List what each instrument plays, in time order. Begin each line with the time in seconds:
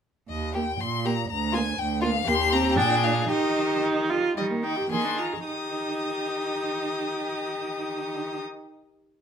0.29 cello D#2, violin D#5
0.54 viola A#3, violin G4 G5
0.81 cello A#2, violin C6
1.05 viola A#3, violin G4 A#5
1.30 cello D2, violin A#5
1.52 viola A#3, violin F4 G#5
1.78 cello D2, violin G5
2.02 viola A#3, violin F4 F5
2.26 cello D#2, viola A#3, violin G4 C6
2.53 viola C4, violin A#5
2.77 cello A#2, viola D4, violin G#4 G5
3.03 violin F5
3.29 cello D#3, viola D#4, violin G4 D#5
3.82 viola D#4
4.10 viola F4
4.37 cello D#3, viola G3, violin D#5
4.50 viola A#3
4.63 viola D#4, violin G5
4.77 viola G4
4.90 cello D#3, viola A#3, violin G#4 C6
5.04 viola D4
5.18 viola F4, violin A#5
5.33 viola G#4
5.46 cello D#3, viola D#4, violin G4 D#6